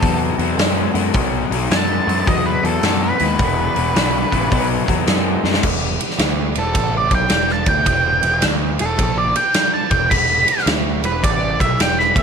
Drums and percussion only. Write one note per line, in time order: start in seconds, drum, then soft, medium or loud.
0.03 kick loud
0.03 open hi-hat medium
0.39 open hi-hat medium
0.59 snare loud
0.59 open hi-hat medium
0.95 open hi-hat medium
1.14 kick loud
1.14 open hi-hat medium
1.52 open hi-hat medium
1.71 snare loud
1.71 open hi-hat medium
2.09 open hi-hat medium
2.27 kick loud
2.27 open hi-hat medium
2.64 open hi-hat soft
2.83 snare loud
2.83 open hi-hat medium
3.19 open hi-hat medium
3.39 kick loud
3.39 open hi-hat medium
3.76 open hi-hat medium
3.96 snare loud
3.96 open hi-hat medium
4.32 kick medium
4.32 open hi-hat medium
4.52 kick loud
4.52 open hi-hat medium
4.88 kick medium
4.88 open hi-hat medium
5.07 snare loud
5.07 open hi-hat medium
5.45 snare medium
5.54 snare medium
5.63 kick loud
5.63 crash loud
6.00 ride medium
6.11 snare soft
6.19 snare loud
6.19 ride medium
6.55 ride medium
6.75 kick loud
6.75 ride medium
7.11 kick loud
7.11 ride medium
7.30 snare loud
7.30 ride medium
7.49 snare soft
7.66 kick loud
7.66 ride medium
7.86 kick loud
7.86 ride medium
8.23 ride medium
8.42 snare loud
8.42 ride medium
8.79 ride medium
8.99 kick loud
8.99 ride medium
9.35 ride medium
9.54 snare loud
9.54 ride loud
9.91 kick loud
9.91 ride medium
10.11 kick loud
10.11 crash medium
10.48 ride medium
10.58 snare soft
10.67 snare loud
10.67 ride medium
11.04 ride medium
11.24 kick loud
11.24 ride medium
11.60 kick medium
11.60 ride medium
11.80 snare loud
11.80 ride medium
12.00 snare soft
12.16 kick loud
12.16 ride medium